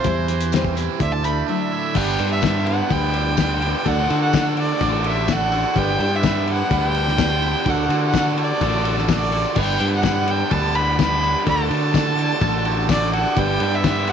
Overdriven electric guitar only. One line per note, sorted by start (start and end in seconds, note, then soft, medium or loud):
0.05 0.28 E3 medium
0.29 1.00 E3 medium
0.53 1.00 C4 medium
0.75 1.00 E4 medium
0.99 1.95 D3 medium
1.23 1.95 A3 medium
1.47 1.94 D4 medium
1.72 1.95 E4 medium
1.94 2.40 G3 loud
1.94 2.19 B3 loud
1.94 2.20 D4 loud
1.94 2.18 B4 loud
2.19 2.42 B3 medium
2.19 2.42 D4 medium
2.19 2.42 B4 medium
2.41 2.89 G3 medium
2.41 2.90 B3 medium
2.41 2.90 D4 medium
2.41 2.91 B4 medium
2.90 3.35 G3 loud
2.90 3.13 B3 loud
2.90 3.15 D4 loud
2.90 3.12 B4 loud
3.13 3.37 B3 medium
3.13 3.37 D4 medium
3.13 3.38 B4 medium
3.37 3.84 G3 medium
3.37 3.62 B3 medium
3.37 3.63 D4 medium
3.37 3.61 B4 medium
3.62 3.85 B3 medium
3.62 3.85 D4 medium
3.62 3.84 B4 medium
3.85 4.31 D3 medium
3.85 4.11 D4 medium
3.85 4.09 F#4 loud
3.85 4.08 A4 loud
4.09 4.33 D4 medium
4.09 4.33 F#4 medium
4.09 4.34 A4 medium
4.33 4.80 D3 medium
4.33 4.81 D4 medium
4.33 4.81 F#4 medium
4.33 4.82 A4 medium
4.81 5.27 D3 medium
4.81 5.07 D4 loud
4.81 5.05 F#4 loud
4.81 5.04 A4 loud
5.05 5.29 D4 medium
5.05 5.29 F#4 medium
5.05 5.30 A4 medium
5.29 5.75 D3 medium
5.29 5.53 D4 medium
5.29 5.52 F#4 medium
5.29 5.51 A4 medium
5.52 5.77 D4 medium
5.52 5.75 F#4 medium
5.52 5.74 A4 medium
5.76 6.22 G3 medium
5.76 6.00 B3 medium
5.76 6.02 D4 loud
5.76 5.99 B4 loud
6.00 6.24 B3 medium
6.00 6.24 D4 medium
6.00 6.24 B4 medium
6.23 6.69 G3 medium
6.23 6.71 B3 medium
6.23 6.71 D4 medium
6.23 6.71 B4 medium
6.71 7.17 G3 medium
6.71 6.95 B3 loud
6.71 6.97 D4 loud
6.71 6.94 B4 loud
6.95 7.19 B3 medium
6.95 7.19 D4 medium
6.95 7.19 B4 medium
7.19 7.65 G3 medium
7.19 7.42 B3 medium
7.19 7.44 D4 medium
7.19 7.42 B4 medium
7.43 7.65 B3 medium
7.43 7.67 D4 medium
7.43 7.65 B4 medium
7.67 8.14 D3 medium
7.67 7.92 D4 medium
7.67 7.91 F#4 medium
7.67 7.89 A4 loud
7.91 8.15 D4 medium
7.91 8.15 F#4 medium
7.91 8.16 A4 medium
8.15 8.60 D3 medium
8.15 8.62 D4 medium
8.15 8.61 F#4 medium
8.15 8.62 A4 medium
8.61 9.08 D3 loud
8.61 8.87 D4 loud
8.61 8.85 F#4 loud
8.61 8.84 A4 loud
8.85 9.09 D4 medium
8.85 9.09 F#4 medium
8.85 9.09 A4 medium
9.09 9.55 D3 medium
9.09 9.34 D4 medium
9.09 9.32 F#4 medium
9.09 9.31 A4 medium
9.32 9.56 D4 medium
9.32 9.56 F#4 medium
9.32 9.55 A4 medium
9.56 10.02 G3 loud
9.56 9.80 B3 loud
9.56 9.81 D4 medium
9.56 9.79 B4 loud
9.80 10.03 B3 medium
9.80 10.04 D4 medium
9.80 10.04 B4 medium
10.03 10.49 G3 medium
10.03 10.51 B3 medium
10.03 10.51 D4 medium
10.03 10.51 B4 medium
10.51 10.97 G3 medium
10.51 10.75 B3 loud
10.51 10.76 D4 medium
10.51 10.74 B4 loud
10.75 10.98 B3 medium
10.75 10.98 D4 medium
10.75 10.98 B4 medium
10.98 11.45 G3 medium
10.98 11.22 B3 medium
10.98 11.23 D4 medium
10.98 11.21 B4 medium
11.22 11.45 B3 medium
11.22 11.46 D4 medium
11.22 11.45 B4 medium
11.46 11.92 D3 loud
11.46 11.71 D4 loud
11.46 11.69 F#4 loud
11.46 11.68 A4 loud
11.69 11.93 D4 medium
11.69 11.93 F#4 medium
11.69 11.94 A4 medium
11.93 12.40 D3 medium
11.93 12.41 D4 medium
11.93 12.41 F#4 medium
11.93 12.42 A4 medium
12.41 12.87 D3 medium
12.41 12.67 D4 loud
12.41 12.65 F#4 loud
12.41 12.64 A4 loud
12.65 12.89 D4 medium
12.65 12.88 F#4 medium
12.65 12.89 A4 medium
12.89 13.35 D3 medium
12.89 13.13 D4 medium
12.89 13.12 F#4 medium
12.89 13.11 A4 medium
13.12 13.36 D4 medium
13.12 13.35 F#4 medium
13.12 13.35 A4 medium
13.35 13.83 G3 medium
13.35 13.59 B3 loud
13.35 13.61 D4 medium
13.35 13.59 B4 loud
13.59 13.84 B3 medium
13.59 13.84 D4 medium
13.59 13.84 B4 medium
13.83 14.12 G3 medium
13.83 14.12 B3 medium
13.83 14.12 D4 medium
13.83 14.12 B4 medium